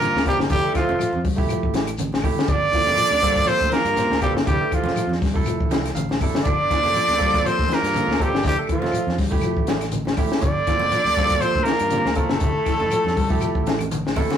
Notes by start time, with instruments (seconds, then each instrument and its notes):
Already playing: baritone saxophone A#2, tenor saxophone A#3, trumpet A#4
0.00 clean electric guitar D3, tine electric piano A#3 C4 F4 A#4, closed hi-hat, high conga, shekere
0.15 fingered electric bass D2, snare, high conga
0.25 baritone saxophone G2, clean electric guitar C3, tenor saxophone G3, tine electric piano A#3 C4 F4 A#4, trumpet G4, muted fingered electric bass stroke, kick, closed hi-hat, low conga, claves, shekere
0.39 fingered electric bass G1, clean electric guitar D3, snare
0.49 fingered electric bass F1, baritone saxophone G2, clean electric guitar D3, tenor saxophone G3, tine electric piano A3 E4 G4, trumpet G4, kick, closed hi-hat, low conga, shekere
0.63 tine electric piano A3 A4 E5
0.74 baritone saxophone F2, clean electric guitar E3, trumpet F4, muted fingered electric bass stroke, kick, snare, closed hi-hat, claves, shekere
0.78 tenor saxophone F3
0.89 fingered electric bass F1, high conga
0.99 clean electric guitar F3, muted fingered electric bass stroke, closed hi-hat, high conga, claves, shekere
1.13 fingered electric bass F2, high conga
1.24 clean electric guitar G3, kick, open hi-hat, shekere
1.36 fingered electric bass F1, tine electric piano A3 E4 G4, kick
1.49 clean electric guitar F3, closed hi-hat, high conga, claves, shekere
1.63 fingered electric bass A1, kick
1.73 clean electric guitar E3, snare, closed hi-hat, high conga, shekere
1.87 closed hi-hat, claves
1.97 clean electric guitar D3, closed hi-hat, high conga, shekere
2.12 snare, high conga
2.22 clean electric guitar C3, tine electric piano A3 E4 G4, kick, open hi-hat, low conga, claves, shekere
2.37 clean electric guitar D3, snare
2.47 fingered electric bass G1, clean electric guitar D3, baritone saxophone D3, tenor saxophone D4, trumpet D5, kick, closed hi-hat, low conga, shekere
2.72 clean electric guitar E3, tine electric piano A#3 C4 F4 A4, kick, closed hi-hat, claves, shekere
2.87 fingered electric bass F1, high conga
2.97 clean electric guitar F3, closed hi-hat, high conga, claves, shekere
3.10 fingered electric bass D2, high conga
3.22 clean electric guitar G3, tine electric piano A#3 C4 F4 A4, kick, closed hi-hat
3.36 fingered electric bass G1, kick, closed hi-hat, high conga
3.46 baritone saxophone C3, clean electric guitar F3, tenor saxophone C4, trumpet C5, closed hi-hat, high conga, claves, shekere
3.61 fingered electric bass D2, kick
3.71 baritone saxophone A#2, clean electric guitar E3, tenor saxophone A#3, trumpet A#4, muted fingered electric bass stroke, snare, closed hi-hat, high conga, shekere
3.85 fingered electric bass G2, closed hi-hat, claves
3.96 tine electric piano A#3 C4 F4 C5, snare, closed hi-hat, high conga, shekere
4.10 fingered electric bass D2, snare, high conga
4.20 baritone saxophone G2, clean electric guitar C3, tenor saxophone G3, tine electric piano A#3 C4 F4 A4, trumpet G4, muted fingered electric bass stroke, kick, closed hi-hat, low conga, claves, shekere
4.35 fingered electric bass G1, clean electric guitar D3, snare
4.45 fingered electric bass F1, clean electric guitar D3, tine electric piano A3 E4 G4, trumpet G4, kick, closed hi-hat, low conga, shekere
4.49 baritone saxophone G2, tenor saxophone G3
4.60 tine electric piano A3 G4 E5
4.71 baritone saxophone F2, clean electric guitar E3, trumpet F4, muted fingered electric bass stroke, kick, closed hi-hat, claves, shekere
4.75 tenor saxophone F3
4.83 fingered electric bass F1, high conga
4.88 snare
4.95 clean electric guitar F3, muted fingered electric bass stroke, closed hi-hat, high conga, claves, shekere
5.07 fingered electric bass F2, high conga
5.12 snare
5.20 clean electric guitar G3, kick, snare, open hi-hat, shekere
5.34 fingered electric bass F1, tine electric piano A3 E4 A4, kick
5.45 clean electric guitar F3, closed hi-hat, high conga, claves, shekere
5.60 fingered electric bass A1, kick
5.69 fingered electric bass C2, clean electric guitar E3, tine electric piano G5, snare, closed hi-hat, high conga, shekere
5.85 snare, closed hi-hat, claves
5.95 fingered electric bass A1, clean electric guitar D3, tine electric piano F5, closed hi-hat, high conga, shekere
6.09 snare, high conga
6.20 fingered electric bass G1, clean electric guitar C3, tine electric piano A3 E4 A4 D5, kick, open hi-hat, low conga, claves, shekere
6.35 clean electric guitar D3, snare
6.45 fingered electric bass G1, baritone saxophone D3, clean electric guitar D3, tenor saxophone D4, trumpet D5, kick, closed hi-hat, low conga, shekere
6.70 clean electric guitar E3, tine electric piano A#3 C4 F4 A4, kick, snare, closed hi-hat, claves, shekere
6.83 fingered electric bass F1, high conga
6.94 clean electric guitar F3, closed hi-hat, high conga, claves, shekere
7.08 fingered electric bass D2, snare, high conga
7.17 clean electric guitar G3, tine electric piano A#3 C4 F4 A4, kick, closed hi-hat, shekere
7.34 fingered electric bass G1, kick, closed hi-hat
7.44 clean electric guitar F3, tenor saxophone C4, trumpet C5, closed hi-hat, high conga, claves, shekere
7.48 baritone saxophone C3
7.59 fingered electric bass D2, kick
7.68 baritone saxophone A#2, clean electric guitar E3, muted fingered electric bass stroke, closed hi-hat, high conga, shekere
7.72 tenor saxophone A#3, trumpet A#4, snare
7.82 fingered electric bass G2, snare, closed hi-hat, claves
7.93 clean electric guitar D3, tine electric piano A#3 C4 F4 A4, closed hi-hat, high conga, shekere
8.07 fingered electric bass D2, high conga
8.11 snare
8.17 tine electric piano A#3 C4 F4 A4, muted clean electric guitar stroke, muted fingered electric bass stroke, kick, closed hi-hat, low conga, claves, shekere
8.22 baritone saxophone G2, tenor saxophone G3, trumpet G4
8.32 fingered electric bass G1, clean electric guitar D3, snare
8.43 fingered electric bass F1, baritone saxophone G2, clean electric guitar D3, tine electric piano A3 E4 G4, kick, closed hi-hat, low conga, shekere
8.47 tenor saxophone G3, trumpet G4, snare
8.58 tine electric piano A3 A4 E5
8.67 clean electric guitar E3, muted fingered electric bass stroke, kick, closed hi-hat, claves, shekere
8.72 baritone saxophone F2, tenor saxophone F3, trumpet F4
8.81 fingered electric bass F1, snare, high conga
8.92 clean electric guitar F3, muted fingered electric bass stroke, closed hi-hat, high conga, claves, shekere
9.07 fingered electric bass F2, snare, high conga
9.18 clean electric guitar G3, kick, snare, open hi-hat, shekere
9.31 fingered electric bass F1, tine electric piano A3 E4 G4, kick
9.41 clean electric guitar F3, closed hi-hat, claves, shekere
9.45 high conga
9.57 fingered electric bass A1, kick
9.67 clean electric guitar E3, snare, closed hi-hat, high conga, shekere
9.81 snare, closed hi-hat, claves
9.92 clean electric guitar D3, closed hi-hat, high conga, shekere
10.05 snare, high conga
10.17 clean electric guitar A2, tine electric piano A3 E4 G4, kick, open hi-hat, low conga, claves, shekere
10.30 muted clean electric guitar stroke, snare
10.41 fingered electric bass G1, clean electric guitar D3, baritone saxophone D3, tenor saxophone D4, trumpet D5, kick, closed hi-hat, low conga, shekere
10.67 clean electric guitar E3, tine electric piano A#3 C4 F4 A4, kick, snare, closed hi-hat, claves, shekere
10.80 fingered electric bass F1, high conga
10.91 clean electric guitar F3, closed hi-hat, high conga, claves, shekere
11.05 fingered electric bass D2, high conga
11.16 clean electric guitar G3, tine electric piano A#3 C4 F4 A4, kick, snare, closed hi-hat
11.30 fingered electric bass G1, kick, closed hi-hat, high conga
11.40 baritone saxophone C3, clean electric guitar F3, tenor saxophone C4, trumpet C5, closed hi-hat, claves, shekere
11.44 high conga
11.55 fingered electric bass D2, kick
11.64 baritone saxophone A#2, clean electric guitar E3, tenor saxophone A#3, trumpet A#4, muted fingered electric bass stroke, snare, closed hi-hat, shekere
11.68 high conga
11.79 fingered electric bass G2, closed hi-hat, claves
11.90 clean electric guitar D3, tine electric piano A#3 C4 F4 G4, closed hi-hat, high conga, shekere
12.05 fingered electric bass D2, snare, high conga
12.13 baritone saxophone A2, clean electric guitar C3, tenor saxophone A3, tine electric piano A#3 C4, trumpet A4, kick, closed hi-hat, low conga
12.17 tine electric piano F4 A#4, claves, shekere
12.29 fingered electric bass G1, clean electric guitar D3, snare
12.40 fingered electric bass F1, clean electric guitar D3, tine electric piano A3 E4 G4, kick, closed hi-hat, low conga, shekere
12.56 tine electric piano A3 E4 A4
12.65 clean electric guitar E3, muted fingered electric bass stroke, kick, snare, closed hi-hat, claves, shekere
12.80 fingered electric bass F1, high conga
12.90 clean electric guitar F3, muted fingered electric bass stroke, closed hi-hat, high conga, claves, shekere
13.05 fingered electric bass F2, snare, high conga
13.16 clean electric guitar G3, kick, open hi-hat, shekere
13.29 fingered electric bass F1, tine electric piano A3 E4 G4, kick, high conga
13.41 clean electric guitar F3, closed hi-hat, high conga, claves, shekere
13.55 fingered electric bass A1, kick
13.66 clean electric guitar E3, snare, closed hi-hat, high conga, shekere
13.79 closed hi-hat, high conga, claves
13.91 clean electric guitar D3, closed hi-hat, high conga, shekere
14.06 snare, high conga
14.16 clean electric guitar C3, tine electric piano A3 E4 A4, kick, open hi-hat, low conga, claves, shekere
14.30 clean electric guitar D3, snare, low conga